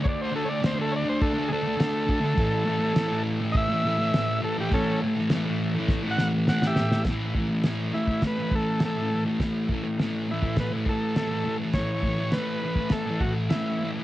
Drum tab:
CC |x---x---x---x---|x---x---x---x---|x---x-----------|x---x---x---x---|
SD |----o-------o---|----o-------o---|----o---o-o-oooo|o---o---o---o---|
BD |o-------o-----o-|o-------o-------|o-------o-------|o-o----oo-o-----|

CC |x---x---x---x---|x---x---x---x---|
SD |o---o---o---o---|o---o---o---o---|
BD |o-o----oo-o-----|o-o----oo-o-----|